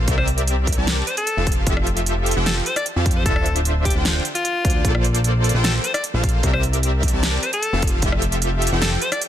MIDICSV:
0, 0, Header, 1, 5, 480
1, 0, Start_track
1, 0, Tempo, 397351
1, 93, Time_signature, 4, 2, 24, 8
1, 11211, End_track
2, 0, Start_track
2, 0, Title_t, "Alto saxophone"
2, 0, Program_c, 0, 65
2, 217, Note_on_c, 0, 72, 94
2, 323, Note_off_c, 0, 72, 0
2, 1295, Note_on_c, 0, 72, 94
2, 1392, Note_off_c, 0, 72, 0
2, 1417, Note_on_c, 0, 69, 96
2, 1823, Note_off_c, 0, 69, 0
2, 2973, Note_on_c, 0, 69, 92
2, 3085, Note_off_c, 0, 69, 0
2, 3215, Note_on_c, 0, 72, 97
2, 3312, Note_off_c, 0, 72, 0
2, 3341, Note_on_c, 0, 74, 93
2, 3445, Note_off_c, 0, 74, 0
2, 3819, Note_on_c, 0, 72, 89
2, 3911, Note_off_c, 0, 72, 0
2, 3932, Note_on_c, 0, 69, 93
2, 4295, Note_off_c, 0, 69, 0
2, 4653, Note_on_c, 0, 67, 91
2, 4765, Note_off_c, 0, 67, 0
2, 5255, Note_on_c, 0, 65, 97
2, 5902, Note_off_c, 0, 65, 0
2, 6811, Note_on_c, 0, 69, 92
2, 6924, Note_off_c, 0, 69, 0
2, 7050, Note_on_c, 0, 72, 92
2, 7150, Note_off_c, 0, 72, 0
2, 7173, Note_on_c, 0, 74, 95
2, 7281, Note_off_c, 0, 74, 0
2, 7893, Note_on_c, 0, 72, 99
2, 8001, Note_off_c, 0, 72, 0
2, 8973, Note_on_c, 0, 72, 95
2, 9071, Note_off_c, 0, 72, 0
2, 9097, Note_on_c, 0, 69, 100
2, 9503, Note_off_c, 0, 69, 0
2, 10654, Note_on_c, 0, 69, 93
2, 10765, Note_off_c, 0, 69, 0
2, 10894, Note_on_c, 0, 72, 96
2, 10992, Note_off_c, 0, 72, 0
2, 11019, Note_on_c, 0, 74, 91
2, 11124, Note_off_c, 0, 74, 0
2, 11211, End_track
3, 0, Start_track
3, 0, Title_t, "Supersaw synth"
3, 0, Program_c, 1, 81
3, 91, Note_on_c, 1, 60, 85
3, 91, Note_on_c, 1, 67, 76
3, 91, Note_on_c, 1, 70, 77
3, 91, Note_on_c, 1, 74, 76
3, 92, Note_on_c, 1, 76, 93
3, 905, Note_off_c, 1, 60, 0
3, 905, Note_off_c, 1, 67, 0
3, 905, Note_off_c, 1, 74, 0
3, 906, Note_off_c, 1, 70, 0
3, 906, Note_off_c, 1, 76, 0
3, 934, Note_on_c, 1, 70, 83
3, 935, Note_on_c, 1, 60, 91
3, 935, Note_on_c, 1, 67, 84
3, 935, Note_on_c, 1, 74, 84
3, 935, Note_on_c, 1, 81, 103
3, 1264, Note_off_c, 1, 60, 0
3, 1264, Note_off_c, 1, 67, 0
3, 1264, Note_off_c, 1, 70, 0
3, 1265, Note_off_c, 1, 74, 0
3, 1265, Note_off_c, 1, 81, 0
3, 1655, Note_on_c, 1, 53, 86
3, 1655, Note_on_c, 1, 65, 80
3, 1655, Note_on_c, 1, 67, 76
3, 1655, Note_on_c, 1, 69, 79
3, 1655, Note_on_c, 1, 77, 94
3, 1984, Note_off_c, 1, 67, 0
3, 1985, Note_off_c, 1, 53, 0
3, 1985, Note_off_c, 1, 65, 0
3, 1985, Note_off_c, 1, 69, 0
3, 1985, Note_off_c, 1, 77, 0
3, 2013, Note_on_c, 1, 53, 84
3, 2013, Note_on_c, 1, 65, 79
3, 2013, Note_on_c, 1, 67, 76
3, 2013, Note_on_c, 1, 69, 78
3, 2013, Note_on_c, 1, 76, 94
3, 2826, Note_off_c, 1, 53, 0
3, 2826, Note_off_c, 1, 65, 0
3, 2826, Note_off_c, 1, 67, 0
3, 2826, Note_off_c, 1, 69, 0
3, 2826, Note_off_c, 1, 76, 0
3, 2855, Note_on_c, 1, 65, 84
3, 2855, Note_on_c, 1, 67, 82
3, 2856, Note_on_c, 1, 53, 94
3, 2856, Note_on_c, 1, 69, 83
3, 2856, Note_on_c, 1, 79, 104
3, 3185, Note_off_c, 1, 53, 0
3, 3185, Note_off_c, 1, 65, 0
3, 3185, Note_off_c, 1, 67, 0
3, 3185, Note_off_c, 1, 69, 0
3, 3185, Note_off_c, 1, 79, 0
3, 3575, Note_on_c, 1, 53, 87
3, 3575, Note_on_c, 1, 65, 78
3, 3575, Note_on_c, 1, 77, 96
3, 3576, Note_on_c, 1, 67, 81
3, 3576, Note_on_c, 1, 69, 78
3, 3904, Note_off_c, 1, 65, 0
3, 3905, Note_off_c, 1, 53, 0
3, 3905, Note_off_c, 1, 67, 0
3, 3905, Note_off_c, 1, 69, 0
3, 3905, Note_off_c, 1, 77, 0
3, 3934, Note_on_c, 1, 50, 84
3, 3934, Note_on_c, 1, 62, 76
3, 3934, Note_on_c, 1, 65, 76
3, 3934, Note_on_c, 1, 72, 75
3, 3935, Note_on_c, 1, 76, 89
3, 4747, Note_off_c, 1, 50, 0
3, 4747, Note_off_c, 1, 62, 0
3, 4747, Note_off_c, 1, 65, 0
3, 4747, Note_off_c, 1, 72, 0
3, 4747, Note_off_c, 1, 76, 0
3, 4777, Note_on_c, 1, 50, 93
3, 4777, Note_on_c, 1, 62, 84
3, 4777, Note_on_c, 1, 65, 85
3, 4777, Note_on_c, 1, 79, 100
3, 4778, Note_on_c, 1, 72, 86
3, 5105, Note_off_c, 1, 50, 0
3, 5105, Note_off_c, 1, 62, 0
3, 5106, Note_off_c, 1, 65, 0
3, 5106, Note_off_c, 1, 72, 0
3, 5106, Note_off_c, 1, 79, 0
3, 5614, Note_on_c, 1, 50, 81
3, 5615, Note_on_c, 1, 62, 75
3, 5615, Note_on_c, 1, 65, 74
3, 5615, Note_on_c, 1, 72, 73
3, 5615, Note_on_c, 1, 74, 90
3, 5826, Note_off_c, 1, 50, 0
3, 5826, Note_off_c, 1, 62, 0
3, 5826, Note_off_c, 1, 65, 0
3, 5826, Note_off_c, 1, 72, 0
3, 5826, Note_off_c, 1, 74, 0
3, 5854, Note_on_c, 1, 69, 79
3, 5855, Note_on_c, 1, 58, 81
3, 5855, Note_on_c, 1, 65, 76
3, 5855, Note_on_c, 1, 72, 75
3, 5855, Note_on_c, 1, 74, 94
3, 6667, Note_off_c, 1, 58, 0
3, 6667, Note_off_c, 1, 65, 0
3, 6667, Note_off_c, 1, 69, 0
3, 6667, Note_off_c, 1, 72, 0
3, 6668, Note_off_c, 1, 74, 0
3, 6698, Note_on_c, 1, 58, 94
3, 6698, Note_on_c, 1, 65, 85
3, 6698, Note_on_c, 1, 69, 85
3, 6698, Note_on_c, 1, 72, 85
3, 6698, Note_on_c, 1, 79, 100
3, 7026, Note_off_c, 1, 58, 0
3, 7026, Note_off_c, 1, 65, 0
3, 7026, Note_off_c, 1, 69, 0
3, 7026, Note_off_c, 1, 72, 0
3, 7026, Note_off_c, 1, 79, 0
3, 7415, Note_on_c, 1, 58, 88
3, 7415, Note_on_c, 1, 69, 81
3, 7415, Note_on_c, 1, 72, 80
3, 7416, Note_on_c, 1, 65, 77
3, 7416, Note_on_c, 1, 77, 94
3, 7745, Note_off_c, 1, 58, 0
3, 7745, Note_off_c, 1, 65, 0
3, 7745, Note_off_c, 1, 69, 0
3, 7745, Note_off_c, 1, 72, 0
3, 7745, Note_off_c, 1, 77, 0
3, 7773, Note_on_c, 1, 67, 77
3, 7773, Note_on_c, 1, 74, 79
3, 7773, Note_on_c, 1, 76, 93
3, 7774, Note_on_c, 1, 60, 85
3, 7774, Note_on_c, 1, 70, 77
3, 8586, Note_off_c, 1, 67, 0
3, 8586, Note_off_c, 1, 74, 0
3, 8587, Note_off_c, 1, 60, 0
3, 8587, Note_off_c, 1, 70, 0
3, 8587, Note_off_c, 1, 76, 0
3, 8615, Note_on_c, 1, 67, 85
3, 8616, Note_on_c, 1, 60, 90
3, 8616, Note_on_c, 1, 70, 82
3, 8616, Note_on_c, 1, 74, 84
3, 8616, Note_on_c, 1, 81, 98
3, 8945, Note_off_c, 1, 60, 0
3, 8945, Note_off_c, 1, 67, 0
3, 8945, Note_off_c, 1, 70, 0
3, 8945, Note_off_c, 1, 74, 0
3, 8945, Note_off_c, 1, 81, 0
3, 9334, Note_on_c, 1, 53, 87
3, 9334, Note_on_c, 1, 65, 80
3, 9335, Note_on_c, 1, 67, 78
3, 9335, Note_on_c, 1, 69, 79
3, 9335, Note_on_c, 1, 77, 96
3, 9664, Note_off_c, 1, 53, 0
3, 9664, Note_off_c, 1, 65, 0
3, 9664, Note_off_c, 1, 67, 0
3, 9664, Note_off_c, 1, 69, 0
3, 9664, Note_off_c, 1, 77, 0
3, 9693, Note_on_c, 1, 53, 86
3, 9693, Note_on_c, 1, 65, 78
3, 9693, Note_on_c, 1, 67, 76
3, 9693, Note_on_c, 1, 69, 75
3, 9693, Note_on_c, 1, 76, 93
3, 10506, Note_off_c, 1, 53, 0
3, 10506, Note_off_c, 1, 65, 0
3, 10506, Note_off_c, 1, 67, 0
3, 10506, Note_off_c, 1, 69, 0
3, 10506, Note_off_c, 1, 76, 0
3, 10537, Note_on_c, 1, 53, 92
3, 10537, Note_on_c, 1, 67, 84
3, 10537, Note_on_c, 1, 69, 85
3, 10537, Note_on_c, 1, 79, 103
3, 10538, Note_on_c, 1, 65, 87
3, 10865, Note_off_c, 1, 53, 0
3, 10865, Note_off_c, 1, 69, 0
3, 10865, Note_off_c, 1, 79, 0
3, 10866, Note_off_c, 1, 65, 0
3, 10866, Note_off_c, 1, 67, 0
3, 11211, End_track
4, 0, Start_track
4, 0, Title_t, "Analog synth bass"
4, 0, Program_c, 2, 38
4, 93, Note_on_c, 2, 36, 97
4, 911, Note_off_c, 2, 36, 0
4, 936, Note_on_c, 2, 36, 95
4, 1242, Note_off_c, 2, 36, 0
4, 1657, Note_on_c, 2, 29, 99
4, 1990, Note_off_c, 2, 29, 0
4, 2014, Note_on_c, 2, 29, 98
4, 2832, Note_off_c, 2, 29, 0
4, 2858, Note_on_c, 2, 29, 96
4, 3162, Note_off_c, 2, 29, 0
4, 3578, Note_on_c, 2, 41, 101
4, 3935, Note_on_c, 2, 26, 99
4, 3953, Note_off_c, 2, 41, 0
4, 4752, Note_off_c, 2, 26, 0
4, 4777, Note_on_c, 2, 26, 98
4, 5082, Note_off_c, 2, 26, 0
4, 5614, Note_on_c, 2, 38, 100
4, 5830, Note_off_c, 2, 38, 0
4, 5854, Note_on_c, 2, 34, 98
4, 6672, Note_off_c, 2, 34, 0
4, 6695, Note_on_c, 2, 34, 100
4, 7001, Note_off_c, 2, 34, 0
4, 7416, Note_on_c, 2, 34, 100
4, 7749, Note_off_c, 2, 34, 0
4, 7774, Note_on_c, 2, 36, 99
4, 8592, Note_off_c, 2, 36, 0
4, 8616, Note_on_c, 2, 36, 97
4, 8921, Note_off_c, 2, 36, 0
4, 9337, Note_on_c, 2, 29, 100
4, 9670, Note_off_c, 2, 29, 0
4, 9696, Note_on_c, 2, 29, 98
4, 10512, Note_off_c, 2, 29, 0
4, 10537, Note_on_c, 2, 29, 97
4, 10842, Note_off_c, 2, 29, 0
4, 11211, End_track
5, 0, Start_track
5, 0, Title_t, "Drums"
5, 92, Note_on_c, 9, 42, 78
5, 93, Note_on_c, 9, 36, 120
5, 213, Note_off_c, 9, 42, 0
5, 214, Note_off_c, 9, 36, 0
5, 214, Note_on_c, 9, 37, 77
5, 333, Note_on_c, 9, 42, 67
5, 335, Note_off_c, 9, 37, 0
5, 454, Note_off_c, 9, 42, 0
5, 456, Note_on_c, 9, 42, 68
5, 574, Note_off_c, 9, 42, 0
5, 574, Note_on_c, 9, 42, 78
5, 695, Note_off_c, 9, 42, 0
5, 813, Note_on_c, 9, 36, 67
5, 813, Note_on_c, 9, 42, 51
5, 876, Note_off_c, 9, 42, 0
5, 876, Note_on_c, 9, 42, 68
5, 934, Note_off_c, 9, 36, 0
5, 997, Note_off_c, 9, 42, 0
5, 1054, Note_on_c, 9, 38, 121
5, 1054, Note_on_c, 9, 42, 80
5, 1175, Note_off_c, 9, 38, 0
5, 1175, Note_off_c, 9, 42, 0
5, 1294, Note_on_c, 9, 42, 66
5, 1415, Note_off_c, 9, 42, 0
5, 1416, Note_on_c, 9, 42, 69
5, 1533, Note_off_c, 9, 42, 0
5, 1533, Note_on_c, 9, 42, 84
5, 1654, Note_off_c, 9, 42, 0
5, 1773, Note_on_c, 9, 42, 51
5, 1774, Note_on_c, 9, 36, 111
5, 1834, Note_off_c, 9, 42, 0
5, 1834, Note_on_c, 9, 42, 63
5, 1895, Note_off_c, 9, 36, 0
5, 1954, Note_off_c, 9, 42, 0
5, 2012, Note_on_c, 9, 42, 75
5, 2014, Note_on_c, 9, 36, 127
5, 2133, Note_off_c, 9, 42, 0
5, 2135, Note_off_c, 9, 36, 0
5, 2136, Note_on_c, 9, 37, 77
5, 2254, Note_on_c, 9, 42, 65
5, 2257, Note_off_c, 9, 37, 0
5, 2375, Note_off_c, 9, 42, 0
5, 2376, Note_on_c, 9, 42, 66
5, 2494, Note_off_c, 9, 42, 0
5, 2494, Note_on_c, 9, 42, 76
5, 2615, Note_off_c, 9, 42, 0
5, 2733, Note_on_c, 9, 42, 50
5, 2795, Note_off_c, 9, 42, 0
5, 2795, Note_on_c, 9, 42, 65
5, 2916, Note_off_c, 9, 42, 0
5, 2975, Note_on_c, 9, 38, 120
5, 2975, Note_on_c, 9, 42, 78
5, 3095, Note_off_c, 9, 38, 0
5, 3095, Note_off_c, 9, 42, 0
5, 3215, Note_on_c, 9, 42, 66
5, 3336, Note_off_c, 9, 42, 0
5, 3337, Note_on_c, 9, 37, 80
5, 3337, Note_on_c, 9, 42, 67
5, 3454, Note_off_c, 9, 42, 0
5, 3454, Note_on_c, 9, 42, 77
5, 3458, Note_off_c, 9, 37, 0
5, 3575, Note_off_c, 9, 42, 0
5, 3694, Note_on_c, 9, 36, 112
5, 3694, Note_on_c, 9, 42, 48
5, 3756, Note_off_c, 9, 42, 0
5, 3756, Note_on_c, 9, 42, 62
5, 3815, Note_off_c, 9, 36, 0
5, 3876, Note_off_c, 9, 42, 0
5, 3934, Note_on_c, 9, 36, 127
5, 3935, Note_on_c, 9, 42, 74
5, 4055, Note_off_c, 9, 36, 0
5, 4056, Note_off_c, 9, 42, 0
5, 4058, Note_on_c, 9, 37, 77
5, 4175, Note_on_c, 9, 42, 66
5, 4179, Note_off_c, 9, 37, 0
5, 4296, Note_off_c, 9, 42, 0
5, 4297, Note_on_c, 9, 42, 66
5, 4413, Note_off_c, 9, 42, 0
5, 4413, Note_on_c, 9, 42, 72
5, 4534, Note_off_c, 9, 42, 0
5, 4654, Note_on_c, 9, 36, 64
5, 4655, Note_on_c, 9, 42, 48
5, 4716, Note_off_c, 9, 42, 0
5, 4716, Note_on_c, 9, 42, 63
5, 4775, Note_off_c, 9, 36, 0
5, 4837, Note_off_c, 9, 42, 0
5, 4893, Note_on_c, 9, 38, 122
5, 4893, Note_on_c, 9, 42, 76
5, 5014, Note_off_c, 9, 38, 0
5, 5014, Note_off_c, 9, 42, 0
5, 5134, Note_on_c, 9, 42, 64
5, 5255, Note_off_c, 9, 42, 0
5, 5257, Note_on_c, 9, 42, 63
5, 5374, Note_off_c, 9, 42, 0
5, 5374, Note_on_c, 9, 42, 77
5, 5495, Note_off_c, 9, 42, 0
5, 5614, Note_on_c, 9, 36, 111
5, 5615, Note_on_c, 9, 42, 46
5, 5676, Note_off_c, 9, 42, 0
5, 5676, Note_on_c, 9, 42, 61
5, 5735, Note_off_c, 9, 36, 0
5, 5796, Note_off_c, 9, 42, 0
5, 5854, Note_on_c, 9, 36, 117
5, 5855, Note_on_c, 9, 42, 76
5, 5975, Note_off_c, 9, 36, 0
5, 5976, Note_off_c, 9, 42, 0
5, 5976, Note_on_c, 9, 37, 79
5, 6093, Note_on_c, 9, 42, 65
5, 6097, Note_off_c, 9, 37, 0
5, 6214, Note_off_c, 9, 42, 0
5, 6216, Note_on_c, 9, 42, 65
5, 6335, Note_off_c, 9, 42, 0
5, 6335, Note_on_c, 9, 42, 72
5, 6455, Note_off_c, 9, 42, 0
5, 6575, Note_on_c, 9, 42, 48
5, 6635, Note_off_c, 9, 42, 0
5, 6635, Note_on_c, 9, 42, 62
5, 6756, Note_off_c, 9, 42, 0
5, 6815, Note_on_c, 9, 38, 122
5, 6815, Note_on_c, 9, 42, 77
5, 6936, Note_off_c, 9, 38, 0
5, 6936, Note_off_c, 9, 42, 0
5, 7055, Note_on_c, 9, 42, 65
5, 7176, Note_off_c, 9, 42, 0
5, 7178, Note_on_c, 9, 37, 81
5, 7178, Note_on_c, 9, 42, 65
5, 7294, Note_off_c, 9, 42, 0
5, 7294, Note_on_c, 9, 42, 77
5, 7299, Note_off_c, 9, 37, 0
5, 7414, Note_off_c, 9, 42, 0
5, 7533, Note_on_c, 9, 42, 48
5, 7534, Note_on_c, 9, 36, 106
5, 7595, Note_off_c, 9, 42, 0
5, 7595, Note_on_c, 9, 42, 60
5, 7655, Note_off_c, 9, 36, 0
5, 7715, Note_off_c, 9, 42, 0
5, 7771, Note_on_c, 9, 42, 79
5, 7774, Note_on_c, 9, 36, 114
5, 7892, Note_off_c, 9, 42, 0
5, 7894, Note_on_c, 9, 37, 86
5, 7895, Note_off_c, 9, 36, 0
5, 8013, Note_on_c, 9, 42, 67
5, 8014, Note_off_c, 9, 37, 0
5, 8133, Note_off_c, 9, 42, 0
5, 8135, Note_on_c, 9, 42, 67
5, 8252, Note_off_c, 9, 42, 0
5, 8252, Note_on_c, 9, 42, 78
5, 8373, Note_off_c, 9, 42, 0
5, 8493, Note_on_c, 9, 42, 48
5, 8494, Note_on_c, 9, 36, 59
5, 8553, Note_off_c, 9, 42, 0
5, 8553, Note_on_c, 9, 42, 64
5, 8615, Note_off_c, 9, 36, 0
5, 8674, Note_off_c, 9, 42, 0
5, 8733, Note_on_c, 9, 38, 114
5, 8733, Note_on_c, 9, 42, 80
5, 8854, Note_off_c, 9, 38, 0
5, 8854, Note_off_c, 9, 42, 0
5, 8972, Note_on_c, 9, 42, 67
5, 9093, Note_off_c, 9, 42, 0
5, 9095, Note_on_c, 9, 42, 67
5, 9212, Note_off_c, 9, 42, 0
5, 9212, Note_on_c, 9, 42, 78
5, 9333, Note_off_c, 9, 42, 0
5, 9451, Note_on_c, 9, 42, 50
5, 9454, Note_on_c, 9, 36, 103
5, 9513, Note_off_c, 9, 42, 0
5, 9513, Note_on_c, 9, 42, 65
5, 9575, Note_off_c, 9, 36, 0
5, 9634, Note_off_c, 9, 42, 0
5, 9691, Note_on_c, 9, 42, 82
5, 9694, Note_on_c, 9, 36, 115
5, 9811, Note_off_c, 9, 42, 0
5, 9813, Note_on_c, 9, 37, 83
5, 9815, Note_off_c, 9, 36, 0
5, 9929, Note_on_c, 9, 42, 71
5, 9934, Note_off_c, 9, 37, 0
5, 10050, Note_off_c, 9, 42, 0
5, 10053, Note_on_c, 9, 42, 69
5, 10170, Note_off_c, 9, 42, 0
5, 10170, Note_on_c, 9, 42, 79
5, 10290, Note_off_c, 9, 42, 0
5, 10412, Note_on_c, 9, 42, 52
5, 10472, Note_off_c, 9, 42, 0
5, 10472, Note_on_c, 9, 42, 67
5, 10592, Note_off_c, 9, 42, 0
5, 10650, Note_on_c, 9, 38, 115
5, 10650, Note_on_c, 9, 42, 83
5, 10771, Note_off_c, 9, 38, 0
5, 10771, Note_off_c, 9, 42, 0
5, 10891, Note_on_c, 9, 42, 69
5, 11012, Note_off_c, 9, 42, 0
5, 11016, Note_on_c, 9, 37, 84
5, 11016, Note_on_c, 9, 42, 68
5, 11132, Note_off_c, 9, 42, 0
5, 11132, Note_on_c, 9, 42, 82
5, 11136, Note_off_c, 9, 37, 0
5, 11211, Note_off_c, 9, 42, 0
5, 11211, End_track
0, 0, End_of_file